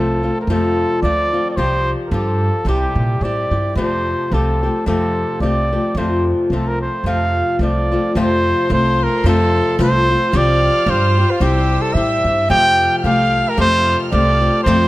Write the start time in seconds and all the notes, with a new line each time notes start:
Already playing: C2 F3 A3 C4 F4 A4
0.23 F3 A3 C4 F4
0.41 A#4
0.47 F2 C3 F3 A3 C4 F4 A4
1.02 D2 F3 A3 C4 F4 D5
1.33 F3 A3 C4 F4
1.51 D5
1.57 C2 C3 F3 C4 F4 G4 C5
2.07 A4 A#4
2.11 G2 F3 C4 F4 G4
2.65 C2 C3 G3 C4 E4 G4
2.69 G4
2.95 A#2
3.21 A2 G3 C4 E4 D5
3.25 G4
3.51 G2 C4 E4 G4
3.75 F2 C3 F3 A3 C4 G4 C5
4.31 C2 F3 A3 C4 G4 A4
4.63 F3 A3 C4 G4
4.86 F2 C3 F3 A3 C4 G4 A4
5.40 C2 F3 A3 C4 G4 D5
5.72 F3 A3 C4 G4
5.95 F2 C3 F3 A3 C4 F4 C5
6.50 C2 F3 A3 C4 F4
6.54 A4
6.67 A#4
6.82 C5
7.03 F2 C3 F3 A3 C4 F4
7.08 F5
7.59 C2 F3 A3 C4 F4
7.64 D5
7.92 F3 A3 C4 F4
8.13 F2 C3 F3 A3 C4 F4 A4 F5 C6
8.20 C5
8.69 C2 F3 A3 C4 F4
8.73 C5
9.04 A#4
9.24 F2 C3 F3 A3 C4 F4
9.29 A4
9.79 C2 F3 A3 C4 F4
9.83 C5
10.10 F3 A3 C4 F4
10.31 C2 C3 F3 C4 F4 G4 C5 G5 F6
10.37 D5
10.86 G2 F3 C4 F4 G4 C5
11.17 C4 F4 G4
11.31 F4
11.40 C2 C3 G3 C4 E4 G4 G5 E6
11.82 A4
11.94 A2 G3 C4 E4 G4 E5
12.24 G2 C4 E4 G4
12.49 F2 C3 F3 A3 C4 G4 A4 G5 F6
12.99 G5
13.04 C2 F3 A3 C4 G4 F5
13.49 A#4
13.57 F2 C3 F3 A3 C4 G4 C5
14.12 C2 F3 A3 C4 G4 D5
14.41 F3 A3 C4 G4
14.64 F2 C3 F3 A3 C4 C5 F5
14.68 F4 C6